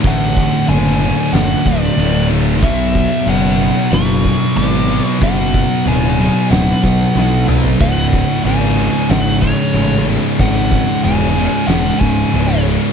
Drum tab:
CC |x---x---x---x---|x---x---x---x---|x---x---x-------|x---x---x---x---|
SD |--------o--o----|--------o--o----|--------o--oo---|--------o--o----|
T2 |----------------|----------------|--------------o-|----------------|
FT |----------------|----------------|---------------o|----------------|
BD |o-o-------o-----|o-o-------o-----|o-o-------o-----|o-o-------o-----|

CC |x---x---x---x---|
SD |--------o--o----|
T2 |----------------|
FT |----------------|
BD |o-o-------o-----|